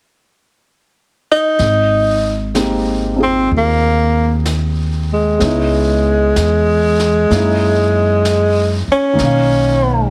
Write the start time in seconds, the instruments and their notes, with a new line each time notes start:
1.32 tenor saxophone D#4
1.59 upright bass G#1, brush sweep, snare
2.54 grand piano G#3 A#3 C4 D#4 G4, brush sweep, snare, hi-hat pedal
3.16 grand piano C4 D#4 F4 G#4
3.23 tenor saxophone C4
3.51 upright bass D#2, brush sweep
3.58 tenor saxophone A#3
4.46 brush sweep, snare, hi-hat pedal
5.14 tenor saxophone G#3
5.38 upright bass C#2, grand piano G#3 B3 C#4 D#4, brush sweep, snare
5.44 grand piano E4
6.36 upright bass E2, brush sweep, snare, hi-hat pedal
6.99 snare
7.29 upright bass F#2, grand piano G#3 A#3 C#4 D#4, brush sweep, snare
7.34 grand piano E4
8.25 brush sweep, snare, hi-hat pedal
8.87 muted upright bass stroke
8.92 tenor saxophone C#4
9.13 grand piano D#3 A#3
9.18 upright bass B1, grand piano C#4 D#4, brush sweep, snare
9.24 grand piano F5